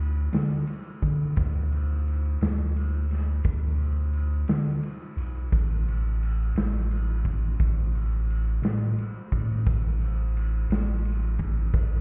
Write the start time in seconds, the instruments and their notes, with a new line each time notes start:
Already playing: sub bass D2
0.33 sub bass D3, snare, ride
0.67 ride
1.02 sub bass D3, kick, ride
1.36 sub bass D2, kick, ride
1.72 ride
2.07 ride
2.41 sub bass D2, snare, ride
2.76 ride
3.11 snare, ride
3.44 sub bass D2, kick, ride
3.79 ride
4.13 ride
4.48 sub bass D3, snare, ride
4.83 ride
5.17 sub bass B1, ride
5.52 sub bass A1, kick, ride
5.88 ride
6.23 ride
6.55 sub bass A1, snare, ride
6.91 ride
7.25 kick, ride
7.60 sub bass A1, kick, ride
7.95 ride
8.30 ride
8.62 sub bass A2, snare, ride
8.98 ride
9.32 sub bass A2, kick, ride
9.66 sub bass A1, kick, ride
10.02 ride
10.37 ride
10.70 sub bass A1, snare, ride
11.05 ride
11.39 kick, ride
11.73 sub bass A1, kick, ride